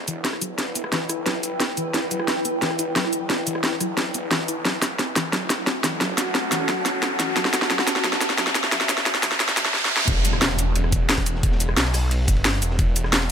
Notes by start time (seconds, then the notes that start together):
Already playing: E1 E4 G4 B4, riser
0.02 G5
0.08 E3, closed hi-hat, shaker
0.25 E4, snare, closed hi-hat
0.33 cross-stick
0.42 F#3, closed hi-hat, shaker
0.58 E1, snare, closed hi-hat
0.75 B3, closed hi-hat, shaker
0.84 cross-stick
0.92 B1 E3, snare, closed hi-hat
1.09 E4, cross-stick, closed hi-hat, shaker
1.26 F#3, snare, closed hi-hat
1.43 G1, closed hi-hat, shaker
1.60 B3, snare, closed hi-hat
1.77 E1 E3, closed hi-hat, shaker
1.94 E1 E4, snare, closed hi-hat
2.11 F#3, closed hi-hat, shaker
2.20 cross-stick
2.28 snare, closed hi-hat
2.45 B3, closed hi-hat, shaker
2.62 E3, snare, closed hi-hat
2.70 cross-stick
2.79 E4, closed hi-hat, shaker
2.96 F#3, snare, closed hi-hat
3.04 cross-stick
3.13 closed hi-hat, shaker
3.30 E1 B3, snare, closed hi-hat
3.47 E3, closed hi-hat, shaker
3.55 cross-stick
3.64 E1 E4, snare, closed hi-hat
3.81 F#3, cross-stick, closed hi-hat, shaker
3.97 E1, snare, closed hi-hat
4.14 B3, closed hi-hat, shaker
4.31 B1 E3, snare, closed hi-hat
4.48 E4, closed hi-hat, shaker
4.65 F#1 F#3 F#4 A4, snare, closed hi-hat
4.76 C#4
4.82 snare, closed hi-hat, shaker
4.99 C4, snare, closed hi-hat
5.16 E3 F#5, snare, closed hi-hat, shaker
5.33 F#3, snare, closed hi-hat
5.45 A5
5.50 snare, closed hi-hat, shaker
5.67 C4, snare, closed hi-hat
5.84 E3, snare, closed hi-hat, shaker
6.01 F#1 F#3, snare, closed hi-hat
6.18 snare, closed hi-hat, shaker
6.35 C2 C4, snare, closed hi-hat
6.52 E3, snare, closed hi-hat, shaker
6.69 F#3, snare, closed hi-hat
6.86 A1, snare, closed hi-hat, shaker
7.03 C4, snare, closed hi-hat
7.20 E3, snare, closed hi-hat, shaker
7.36 F#1 F#3, snare, closed hi-hat
7.45 snare
7.53 snare, closed hi-hat, shaker
7.58 E5
7.62 snare
7.70 F#3, snare, closed hi-hat
7.79 snare
7.87 snare, closed hi-hat, shaker
7.96 snare
8.04 F#3, snare, closed hi-hat
8.13 snare
8.21 snare, closed hi-hat, shaker
8.30 snare
8.38 F#3, snare, closed hi-hat
8.47 snare
8.55 snare, closed hi-hat, shaker
8.64 snare
8.72 F#3, snare, closed hi-hat
8.81 snare, shaker
8.89 F#3, snare, closed hi-hat, shaker
8.98 snare
9.06 F#3, snare, closed hi-hat
9.15 snare, shaker
9.23 F#3, snare, closed hi-hat, shaker
9.31 snare
9.40 F#3, snare, closed hi-hat
9.48 snare, shaker
9.57 F#3, snare, closed hi-hat, shaker
9.65 snare
9.74 snare
9.85 snare
9.96 snare
10.07 E1, kick, closed hi-hat, ride, crash, impact
10.25 closed hi-hat, ride, shaker
10.33 cross-stick, snare
10.41 snare, closed hi-hat, ride
10.51 snare
10.59 closed hi-hat, ride, shaker
10.76 closed hi-hat, ride
10.84 cross-stick
10.92 kick, closed hi-hat, ride, shaker
11.09 snare, closed hi-hat, ride
11.18 kick, cross-stick
11.26 closed hi-hat, ride, shaker
11.35 snare
11.43 E1, kick, closed hi-hat, ride
11.52 snare
11.60 closed hi-hat, ride, shaker
11.69 cross-stick
11.77 B1, snare, closed hi-hat, ride
11.86 snare
11.94 cross-stick, open hi-hat, shaker
12.11 closed hi-hat, ride
12.28 G1, kick, closed hi-hat, ride, shaker
12.37 ride
12.45 snare, closed hi-hat, ride
12.62 E1, closed hi-hat, ride, shaker
12.71 snare
12.79 E1, kick, closed hi-hat, ride
12.96 closed hi-hat, ride, shaker
13.04 cross-stick, snare
13.12 snare, closed hi-hat, ride
13.22 snare